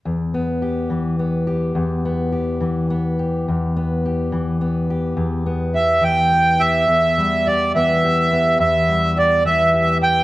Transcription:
<<
  \new Staff \with { instrumentName = "Accordion" } { \time 6/8 \key e \phrygian \tempo 4. = 70 r2. | r2. | r2. | r4 e''8 g''4 e''8~ |
e''4 d''8 e''4. | e''4 d''8 e''4 g''8 | }
  \new Staff \with { instrumentName = "Steel-string acoustic guitar" } { \time 6/8 \key e \phrygian << { r8 b8 g'4 b8 g'8 | r8 b8 g'4 b8 g'8 | r8 b8 g'4 b8 g'8 | r8 b8 g'4 b8 g'8 |
r8 g8 g'8 b8 g'8 b8~ | b8 g8 g'8 b8 g'8 b8 | } \\ { e,4. e4. | e,4. e4. | e,4. e4. | e,4. e4. |
e,4. e4. | e,4. e4. | } >> }
>>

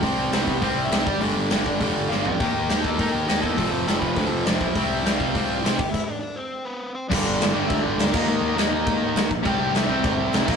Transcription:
<<
  \new Staff \with { instrumentName = "Overdriven electric guitar" } { \time 4/4 \key c \major \tempo 4 = 204 r4 <c' c''>16 <b b'>8. <c' c''>8. <e' e''>8. <d' d''>8~ | <d' d''>2. <f' f''>8 <g' g''>8~ | <g' g''>8 <g' g''>4 <a' a''>4 <g' g''>8 <g' g''>8 <a' a''>8~ | <a' a''>8 <a' a''>4 <b' b''>4 <a' a''>8 <d' d''>8 <e' e''>8~ |
<e' e''>8 <e' e''>4 <f' f''>4. r8 <g' g''>8 | <e' e''>8 <d' d''>8 <d' d''>8 <c' c''>4 <b b'>4 <c' c''>8 | <d' d''>4. r8 <e' e''>8 <d' d''>8 <d' d''>8 <f' f''>8 | <ees' ees''>4 r2. |
<g' g''>8 <g' g''>8 <e' e''>4 <e' e''>2 | }
  \new Staff \with { instrumentName = "Distorted electric guitar" } { \clef bass \time 4/4 \key c \major <c g c'>4 <c g c'>4 <c g c'>4 <c g c'>8 r8 | <g, d g>4 <g, d g>4 <g, d g>4 <g, d g>4 | <ees bes ees'>4 <ees bes ees'>4 <ees bes ees'>4 <ees bes ees'>4 | <f, c f>4 <f, c f>4 <f, c f>4 <f, c f>4 |
<c g c'>4 <c g c'>4 <c g c'>4 <c g c'>8 r8 | r1 | <g, d g>4. <g, d g>2 <ees bes ees'>8~ | <ees bes ees'>4 <ees bes ees'>2~ <ees bes ees'>8 r8 |
<c g c'>4. <c g c'>2 <bes, f bes>8 | }
  \new Staff \with { instrumentName = "Picked electric bass" } { \clef bass \time 4/4 \key c \major c,8 c,8 c,8 c,8 c,8 c,8 c,8 g,,8 | g,,8 g,,8 g,,8 g,,8 f,,8 g,,8 g,,8 f,8 | ees,8 ees,8 ees,8 ees,8 ees,8 ees,8 ees,8 e,8 | f,,8 f,,8 f,,8 f,,8 d,8 f,,8 f,,8 b,,8 |
c,8 c,8 c,8 c,8 c,8 c,8 c,8 g,,8 | r1 | g,,8 g,,8 g,,8 g,,8 d,8 g,,8 d,8 ees,8 | ees,8 ees,8 ees,8 ees,8 ees,8 ees,8 ees,8 bes,,8 |
c,8 c,8 c,8 c,8 g,,8 c,8 c,8 bes,,8 | }
  \new DrumStaff \with { instrumentName = "Drums" } \drummode { \time 4/4 <hho bd>4 <hho sn>8 bd8 <hho bd>4 <hho sn>8 bd8 | hho4 <hho sn>8 bd8 <hho bd>4 sn8 tomfh8 | <hho bd>4 <hho sn>8 bd8 <hho bd>4 <hho sn>8 bd8 | <hho bd>4 <hho sn>8 bd8 <hho bd>4 <hho sn>8 bd8 |
<hho bd>4 <hho sn>8 bd8 <hho bd>4 <hho sn>8 bd8 | <cymc bd>4 r4 r4 r4 | <cymc bd>4 <cymc sn>4 <cymc bd>4 <cymc sn>8 <cymc bd>8 | cymc4 <cymc sn>4 <cymc bd>4 <cymc sn>8 bd8 |
<cymc bd>4 <cymc sn>4 <cymc bd>4 <cymc sn>8 <cymc bd>8 | }
>>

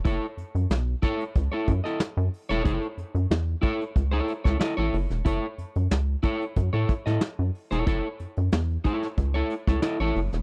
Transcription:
<<
  \new Staff \with { instrumentName = "Clean electric guitar" } { \time 4/4 \key fis \dorian \tempo 4 = 92 <e' a' cis''>16 r4 r16 <e' a' cis''>16 r8 <e' a' cis''>16 r16 <e' a' dis''>16 r8. <e' a' cis''>16 | <e' a' cis''>16 r4 r16 <e' a' cis''>16 r8 <e' a' cis''>16 r16 <e' a' cis''>16 <e' a' dis''>16 <e' a' cis''>16 r8 | <e' a' cis''>16 r4 r16 <e' a' cis''>16 r8 <e' a' cis''>16 r16 <e' a' dis''>16 r8. <e' a' cis''>16 | <e' a' cis''>16 r4 r16 <e' a' cis''>16 r8 <e' a' cis''>16 r16 <e' a' cis''>16 <e' a' dis''>16 <e' a' cis''>16 r8 | }
  \new Staff \with { instrumentName = "Analog synth bass" } { \clef bass \time 4/4 \key fis \dorian fis,,16 r16 fis,16 fis,16 b,,8 r8 cis,16 r16 fis,16 r8 fis,16 r16 e,,16 | fis,,16 r16 fis,16 fis,16 e,8 r8 cis,8 r16 cis,16 r16 a,,16 fis,,16 e,,16 | fis,,16 r16 fis,16 fis,16 cis,8 r8 fis,16 a,16 r16 a,16 r16 fis,16 r16 e,,16 | fis,,16 r16 fis,16 fis,16 e,8 r8 cis,8 r16 cis,16 r16 a,,16 fis,,16 e,,16 | }
  \new DrumStaff \with { instrumentName = "Drums" } \drummode { \time 4/4 <hh bd>16 hh16 hh16 hh16 <hh sn>8 <hh bd>16 hh16 <hh bd>8 <hh bd>16 <hh sn>16 <hh sn>16 hh16 hho16 <hh sn>16 | <hh bd>16 hh16 hh16 hh16 <hh sn>8 <hh bd>16 hh16 <hh bd>16 hh16 hh16 <hh bd sn>16 <hh sn>8 hho16 <hh sn>16 | <hh bd>8 hh16 hh16 <hh sn>8 <hh bd>16 hh16 <hh bd>16 hh16 <hh bd>16 <hh sn>16 <hh sn>8 hho16 <hh sn>16 | <hh bd>8 hh16 hh16 <hh sn>16 hh16 <hh bd>16 <hh sn>16 <hh bd>16 hh16 hh16 <hh bd sn>16 <hh sn>16 hh16 hho16 <hh sn>16 | }
>>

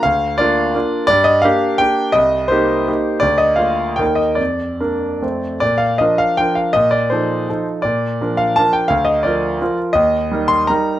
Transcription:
\new Staff \with { instrumentName = "Grand piano" } { \time 3/4 \key bes \major \tempo 4 = 165 << { f''4 d''2 | d''8 ees''8 f''4 g''4 | ees''4 c''2 | d''8 ees''8 f''4 g''8 ees''8 |
d''2~ d''8 r8 | d''8 f''8 ees''8 f''8 g''8 f''8 | ees''8 d''8 c''4. r8 | d''4. f''8 a''8 g''8 |
f''8 ees''8 d''4. r8 | ees''4. c'''8 bes''4 | } \\ { d,4 <bes d' f'>4 <bes d' f'>4 | g,4 <bes d' g'>4 <bes d' g'>4 | c,4 <bes ees' g'>4 <bes ees' g'>4 | d,4 <bes f' bes'>4 <ees, bes ees' bes'>4 |
f,4 <bes d' bes'>4 <f, a c' c''>4 | bes,4 <f d' bes'>4 <f d' bes'>4 | bes,4 <f ees' a'>4 <f ees' a'>4 | bes,4 <f d' bes'>4 <f d' bes'>4 |
d,4 <f f' bes'>4 <f f' bes'>4 | ees,4 <g ees' bes'>4 <g ees' bes'>4 | } >> }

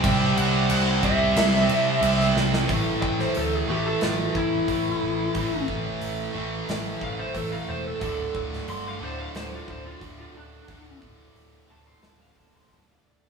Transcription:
<<
  \new Staff \with { instrumentName = "Lead electric guitar" } { \time 4/4 \key a \dorian \tempo 4 = 90 g''8 fis''8 fis''8 e''2 r8 | r8 g''16 c''16 a'16 gis'16 g'16 a'16 f'8 e'4.~ | e'8 r2 f''16 c''16 a'16 f''16 c''16 a'16 | a'8 r8 c'''16 f''16 c''16 f''16 c''16 f'16 c''16 f'16 r16 f'16 d'8~ |
d'8 r4 a''16 c'''16 a''16 f''16 a''16 c'''16 a''16 f''16 d''8 | }
  \new Staff \with { instrumentName = "Distorted electric guitar" } { \time 4/4 \key a \dorian <c g c' e' g' c''>4. <c g c' e' g' c''>2~ <c g c' e' g' c''>8 | r1 | r1 | r1 |
r1 | }
  \new Staff \with { instrumentName = "Distorted electric guitar" } { \clef bass \time 4/4 \key a \dorian <c g c'>4. <c g c'>4. <c g c'>4 | <a, e a>4. <a, e a>4. <a, e a>4 | <a, e a>4. <a, e a>4. <a, e a>4 | <d, a, d>4. <d, a, d>4. <d, a, d>4 |
<d, a, d>4. <d, a, d>4. <d, a, d>4 | }
  \new Staff \with { instrumentName = "Overdriven electric guitar" } { \clef bass \time 4/4 \key a \dorian <c g c'>1 | <a, e a>4. <a, e a>2~ <a, e a>8 | <a, e a>4. <a, e a>2~ <a, e a>8 | <d, a, d>4. <d, a, d>2~ <d, a, d>8 |
<d, a, d>4. <d, a, d>2~ <d, a, d>8 | }
  \new Staff \with { instrumentName = "Picked electric bass" } { \clef bass \time 4/4 \key a \dorian c,8 c,8 c,8 c,8 c,8 c8 c,8 c,8 | a,,8 a,,8 d,8 a,,8 a,,8 a,,8 a,,8 a,,8 | a,,8 a,,8 a,,8 a,,8 a,,8 a,,8 a,,8 e,,8 | d,,8 d,,8 g,,8 d,,8 d,,8 d,,8 d,,8 d,,8 |
d,,8 d,,8 d,,8 d,,8 d,,8 d,,8 d,,8 d,,8 | }
  \new DrumStaff \with { instrumentName = "Drums" } \drummode { \time 4/4 <cymc bd>8 cymc8 cymc8 <cymc bd>8 <cymc sn>8 cymc8 cymc16 sn16 sn16 sn16 | <hho bd>8 bd16 sn16 hho4 <hho sn>8 bd8 <hho bd>4 | <hho bd>8 bd8 hho4 <hho sn>8 bd8 <hho bd>4 | <hho bd>8 bd16 sn16 hho4 <hho sn>8 bd8 <hho bd>4 |
<hho bd>8 bd8 hho4 <hho sn>8 bd8 <bd sn>8 toml16 tomfh16 | }
>>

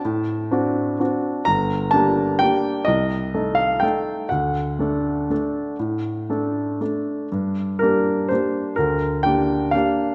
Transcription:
\new Staff \with { instrumentName = "Grand piano" } { \time 3/4 \key g \minor \tempo 4 = 124 << { a''2. | bes''4 a''4 g''4 | ees''4. f''8 g''4 | fis''2.~ |
fis''2 r4 | r4 bes'4 c''4 | bes'4 g''4 f''4 | } \\ { a,4 <c' d' fis'>4 <c' d' fis'>4 | g,,4 <bes d' g'>4 <bes d' g'>4 | c,4 <a ees' a'>4 <a ees' a'>4 | d,4 <a d' a'>4 <a d' a'>4 |
a,4 <a d' a'>4 <a d' a'>4 | g,4 <bes d' g'>4 <bes d' g'>4 | d,4 <bes d' g'>4 <bes d' g'>4 | } >> }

